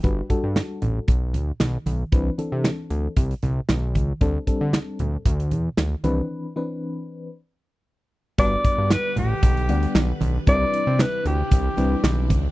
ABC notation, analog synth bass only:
X:1
M:4/4
L:1/16
Q:1/4=115
K:G
V:1 name="Analog synth bass" clef=bass
G,,,2 z G,,2 z A,,,2 B,,,2 D,,2 B,,,2 B,,,2 | C,,2 z C,2 z D,,2 C,,2 C,,2 B,,,2 ^C,,2 | D,,2 z D,2 z D,,2 D,,2 E,,2 D,,2 C,,2 | z16 |
G,,,2 z G,,2 z A,,,2 B,,,2 D,,2 B,,,2 B,,,2 | C,,2 z C,2 z D,,2 C,,2 C,,2 B,,,2 ^C,,2 |]